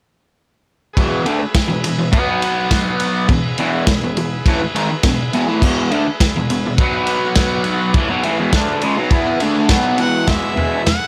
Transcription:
0.93 overdriven electric guitar E2, transistor combo organ G#4 B4 E5, kick, ride
0.98 overdriven electric guitar B2 E3
1.26 overdriven electric guitar D3 A3, ride
1.39 muted overdriven electric guitar stroke
1.54 kick, snare, ride
1.68 overdriven electric guitar E2 B2
1.84 overdriven electric guitar E2 B2, ride
1.98 overdriven electric guitar E2 B2
2.11 overdriven electric guitar B2 F#3 B3, transistor combo organ F#4 B4 F#5, kick, ride
2.42 ride
2.71 kick, snare, ride
3.00 ride
3.27 overdriven electric guitar E2 B2, transistor combo organ G#4 B4 E5, kick, ride
3.58 overdriven electric guitar E2 B2 E3, ride
3.87 overdriven electric guitar E2 B2, kick, snare, ride
4.04 overdriven electric guitar E2 B2
4.17 overdriven electric guitar E2 B2, ride
4.46 overdriven electric guitar A2 E3, kick, ride
4.61 muted overdriven electric guitar stroke
4.75 overdriven electric guitar G#2 D#3, ride
4.91 muted overdriven electric guitar stroke
5.03 overdriven electric guitar E2 B2, kick, snare, ride
5.33 overdriven electric guitar E2 B2, ride
5.47 overdriven electric guitar A2 E3
5.62 overdriven electric guitar E2 B2 E3, kick, crash
5.91 overdriven electric guitar D3 A3, ride
6.07 muted overdriven electric guitar stroke
6.20 kick, snare, ride
6.36 overdriven electric guitar E2 B2
6.50 overdriven electric guitar E2 B2, ride
6.66 overdriven electric guitar E2 B2
6.77 overdriven electric guitar B2, transistor combo organ F#4 B4 F#5, kick, ride
6.81 overdriven electric guitar F#3 B3
7.07 ride
7.35 kick, snare, ride
7.64 ride
7.94 overdriven electric guitar A2 E3, transistor combo organ G#4 B4 E5, kick, ride
8.10 overdriven electric guitar B2 F#3
8.23 overdriven electric guitar A2 E3, ride
8.39 overdriven electric guitar E2 B2
8.53 overdriven electric guitar D3 A3 D4, kick, snare, ride
8.82 overdriven electric guitar C#3 G#3, ride
8.97 overdriven electric guitar B2 F#3
9.10 overdriven electric guitar E3 B3 E4, kick, ride
9.40 overdriven electric guitar D3 A3 D4, transistor combo organ G#5, ride
9.69 overdriven electric guitar B2 F#3 B3, transistor combo organ F#5, kick, snare, ride
9.98 overdriven electric guitar E2 B2 E3, transistor combo organ E5, harmonica F#5, ride
10.26 overdriven electric guitar E2 B2 E3, transistor combo organ G#4 B4 E5, harmonica E5, kick, snare, floor tom
10.30 overdriven electric guitar G#3 B3 E4
10.56 overdriven electric guitar E2 B2 E3 G#3 B3 E4, floor tom
10.86 harmonica F#5, snare, floor tom

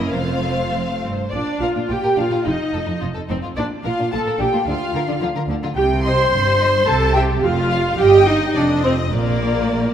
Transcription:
Already playing: cello section F#2, viola section A#3 C#4, violin section E4 A#4 D#5
0.13 double bass section F1, cello section F2, viola section A3 C4, violin section F4 C5 F5
0.74 cello section F2
1.02 cello section G2, viola section C4, violin section C5
1.31 double bass section A#1, cello section A#2, violin section D4 D5, viola section D4
1.60 double bass section A#1, cello section A#2, viola section F4, violin section A#4 F5
1.76 cello section A#2, violin section D4
1.89 double bass section A#1, cello section A#2, violin section F4 G5, viola section G4
2.03 cello section A#2, violin section A#4
2.16 double bass section A#1, cello section A#2, violin section D4 F5, viola section F4
2.32 cello section A#2, violin section F4
2.45 double bass section F1, cello section F2, violin section D#4 D#5, viola section D#4
2.74 double bass section F1, cello section F2, violin section A4
2.86 cello section F2, violin section D#4
3.01 double bass section F1, cello section F2, violin section F4
3.15 cello section F2, violin section A4
3.29 double bass section F1, cello section F2, viola section C4, violin section D#4 C5
3.43 cello section F2, violin section F4
3.56 double bass section A#1, cello section A#2, violin section D4 D5, viola section D4
3.84 double bass section A#1, cello section A#2, viola section F4, violin section A#4 F5
3.99 cello section A#2, violin section D4
4.12 double bass section A#1, cello section A#2, violin section F4 A5, viola section A4
4.27 cello section A#2, violin section A#4
4.38 double bass section A#1, cello section A#2, violin section D4 G5, viola section G4
4.53 cello section A#2, violin section F4
4.67 double bass section D2, cello section D3, violin section D4 F5, viola section F4
4.94 double bass section D2, cello section D3, violin section A#4
5.08 cello section D3, violin section D4
5.20 double bass section D2, cello section D3, violin section F4
5.35 cello section D3, violin section A#4
5.48 double bass section D2, cello section D3, violin section D4
5.64 cello section D3, violin section F4
5.76 double bass section C2, cello section C3, viola section G4, violin section G5
6.03 viola section C5, violin section D#5 C6
6.33 double bass section G1, cello section G2
6.61 violin section D#5
6.86 double bass section C2, cello section C3, viola section A4, violin section A5
7.14 viola section G4, violin section E5 G5
7.42 double bass section F1, cello section F2, viola section F4, violin section F5
7.72 violin section F5
7.98 double bass section G1, cello section G2, viola section G4, violin section D#5 G5
8.27 viola section D#4, violin section D#5
8.54 double bass section F1, cello section F2, viola section D4, violin section D5 D#5
8.83 viola section C4, violin section C5
9.12 double bass section A#1, cello section A#2, viola section A#3, violin section A#4 D5

